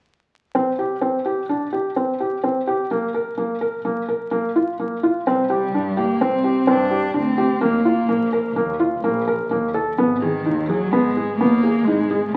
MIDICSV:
0, 0, Header, 1, 4, 480
1, 0, Start_track
1, 0, Key_signature, -3, "minor"
1, 0, Tempo, 472069
1, 550, Time_signature, 5, 2, 24, 8
1, 12574, End_track
2, 0, Start_track
2, 0, Title_t, "Felt piano"
2, 0, Program_c, 0, 0
2, 558, Note_on_c, 0, 60, 59
2, 728, Note_off_c, 0, 60, 0
2, 800, Note_on_c, 0, 67, 50
2, 969, Note_off_c, 0, 67, 0
2, 1031, Note_on_c, 0, 60, 49
2, 1203, Note_off_c, 0, 60, 0
2, 1277, Note_on_c, 0, 67, 46
2, 1447, Note_off_c, 0, 67, 0
2, 1517, Note_on_c, 0, 62, 54
2, 1687, Note_off_c, 0, 62, 0
2, 1754, Note_on_c, 0, 67, 48
2, 1925, Note_off_c, 0, 67, 0
2, 1996, Note_on_c, 0, 60, 52
2, 2166, Note_off_c, 0, 60, 0
2, 2241, Note_on_c, 0, 67, 49
2, 2409, Note_off_c, 0, 67, 0
2, 2475, Note_on_c, 0, 60, 49
2, 2646, Note_off_c, 0, 60, 0
2, 2719, Note_on_c, 0, 67, 55
2, 2888, Note_off_c, 0, 67, 0
2, 2959, Note_on_c, 0, 58, 66
2, 3128, Note_off_c, 0, 58, 0
2, 3196, Note_on_c, 0, 70, 52
2, 3366, Note_off_c, 0, 70, 0
2, 3432, Note_on_c, 0, 58, 53
2, 3603, Note_off_c, 0, 58, 0
2, 3671, Note_on_c, 0, 70, 50
2, 3843, Note_off_c, 0, 70, 0
2, 3912, Note_on_c, 0, 58, 59
2, 4083, Note_off_c, 0, 58, 0
2, 4154, Note_on_c, 0, 70, 51
2, 4324, Note_off_c, 0, 70, 0
2, 4385, Note_on_c, 0, 58, 63
2, 4559, Note_off_c, 0, 58, 0
2, 4633, Note_on_c, 0, 65, 57
2, 4804, Note_off_c, 0, 65, 0
2, 4874, Note_on_c, 0, 58, 49
2, 5045, Note_off_c, 0, 58, 0
2, 5118, Note_on_c, 0, 65, 55
2, 5287, Note_off_c, 0, 65, 0
2, 5358, Note_on_c, 0, 60, 66
2, 5527, Note_off_c, 0, 60, 0
2, 5589, Note_on_c, 0, 67, 55
2, 5761, Note_off_c, 0, 67, 0
2, 5839, Note_on_c, 0, 62, 56
2, 6008, Note_off_c, 0, 62, 0
2, 6072, Note_on_c, 0, 67, 48
2, 6243, Note_off_c, 0, 67, 0
2, 6316, Note_on_c, 0, 60, 63
2, 6485, Note_off_c, 0, 60, 0
2, 6549, Note_on_c, 0, 67, 53
2, 6721, Note_off_c, 0, 67, 0
2, 6785, Note_on_c, 0, 60, 67
2, 6958, Note_off_c, 0, 60, 0
2, 7026, Note_on_c, 0, 67, 58
2, 7199, Note_off_c, 0, 67, 0
2, 7258, Note_on_c, 0, 62, 52
2, 7434, Note_off_c, 0, 62, 0
2, 7502, Note_on_c, 0, 67, 59
2, 7677, Note_off_c, 0, 67, 0
2, 7739, Note_on_c, 0, 58, 71
2, 7914, Note_off_c, 0, 58, 0
2, 7983, Note_on_c, 0, 65, 59
2, 8157, Note_off_c, 0, 65, 0
2, 8222, Note_on_c, 0, 58, 64
2, 8396, Note_off_c, 0, 58, 0
2, 8467, Note_on_c, 0, 70, 55
2, 8640, Note_off_c, 0, 70, 0
2, 8704, Note_on_c, 0, 58, 63
2, 8878, Note_off_c, 0, 58, 0
2, 8945, Note_on_c, 0, 65, 55
2, 9119, Note_off_c, 0, 65, 0
2, 9189, Note_on_c, 0, 58, 67
2, 9362, Note_off_c, 0, 58, 0
2, 9431, Note_on_c, 0, 70, 62
2, 9602, Note_off_c, 0, 70, 0
2, 9669, Note_on_c, 0, 58, 61
2, 9841, Note_off_c, 0, 58, 0
2, 9908, Note_on_c, 0, 69, 58
2, 10081, Note_off_c, 0, 69, 0
2, 10151, Note_on_c, 0, 59, 69
2, 10323, Note_off_c, 0, 59, 0
2, 10393, Note_on_c, 0, 68, 57
2, 10565, Note_off_c, 0, 68, 0
2, 10631, Note_on_c, 0, 63, 60
2, 10803, Note_off_c, 0, 63, 0
2, 10873, Note_on_c, 0, 68, 54
2, 11045, Note_off_c, 0, 68, 0
2, 11110, Note_on_c, 0, 59, 71
2, 11283, Note_off_c, 0, 59, 0
2, 11357, Note_on_c, 0, 68, 56
2, 11527, Note_off_c, 0, 68, 0
2, 11598, Note_on_c, 0, 59, 69
2, 11768, Note_off_c, 0, 59, 0
2, 11828, Note_on_c, 0, 68, 57
2, 12002, Note_off_c, 0, 68, 0
2, 12072, Note_on_c, 0, 63, 59
2, 12245, Note_off_c, 0, 63, 0
2, 12310, Note_on_c, 0, 68, 56
2, 12484, Note_off_c, 0, 68, 0
2, 12574, End_track
3, 0, Start_track
3, 0, Title_t, "Cello"
3, 0, Program_c, 1, 42
3, 5588, Note_on_c, 1, 55, 69
3, 6078, Note_on_c, 1, 58, 67
3, 6093, Note_off_c, 1, 55, 0
3, 6316, Note_on_c, 1, 60, 75
3, 6331, Note_off_c, 1, 58, 0
3, 6811, Note_on_c, 1, 62, 73
3, 6826, Note_off_c, 1, 60, 0
3, 7279, Note_off_c, 1, 62, 0
3, 7289, Note_on_c, 1, 60, 77
3, 7768, Note_on_c, 1, 58, 64
3, 7783, Note_off_c, 1, 60, 0
3, 8718, Note_off_c, 1, 58, 0
3, 10376, Note_on_c, 1, 51, 69
3, 10854, Note_on_c, 1, 54, 76
3, 10869, Note_off_c, 1, 51, 0
3, 11096, Note_on_c, 1, 56, 79
3, 11112, Note_off_c, 1, 54, 0
3, 11561, Note_off_c, 1, 56, 0
3, 11567, Note_on_c, 1, 58, 85
3, 12038, Note_on_c, 1, 56, 75
3, 12053, Note_off_c, 1, 58, 0
3, 12463, Note_off_c, 1, 56, 0
3, 12472, Note_on_c, 1, 57, 48
3, 12530, Note_on_c, 1, 55, 71
3, 12545, Note_off_c, 1, 57, 0
3, 12574, Note_off_c, 1, 55, 0
3, 12574, End_track
4, 0, Start_track
4, 0, Title_t, "Double bass"
4, 0, Program_c, 2, 43
4, 5349, Note_on_c, 2, 36, 68
4, 5753, Note_off_c, 2, 36, 0
4, 5822, Note_on_c, 2, 43, 62
4, 6228, Note_off_c, 2, 43, 0
4, 6306, Note_on_c, 2, 36, 74
4, 6711, Note_off_c, 2, 36, 0
4, 6789, Note_on_c, 2, 43, 75
4, 7193, Note_off_c, 2, 43, 0
4, 7267, Note_on_c, 2, 38, 66
4, 7470, Note_off_c, 2, 38, 0
4, 7743, Note_on_c, 2, 39, 71
4, 8149, Note_off_c, 2, 39, 0
4, 8223, Note_on_c, 2, 34, 62
4, 8629, Note_off_c, 2, 34, 0
4, 8706, Note_on_c, 2, 39, 69
4, 9111, Note_off_c, 2, 39, 0
4, 9182, Note_on_c, 2, 34, 79
4, 9589, Note_off_c, 2, 34, 0
4, 9671, Note_on_c, 2, 39, 69
4, 9872, Note_off_c, 2, 39, 0
4, 10144, Note_on_c, 2, 32, 75
4, 10551, Note_off_c, 2, 32, 0
4, 10626, Note_on_c, 2, 39, 67
4, 11032, Note_off_c, 2, 39, 0
4, 11109, Note_on_c, 2, 32, 72
4, 11514, Note_off_c, 2, 32, 0
4, 11588, Note_on_c, 2, 39, 79
4, 11993, Note_off_c, 2, 39, 0
4, 12072, Note_on_c, 2, 32, 66
4, 12274, Note_off_c, 2, 32, 0
4, 12574, End_track
0, 0, End_of_file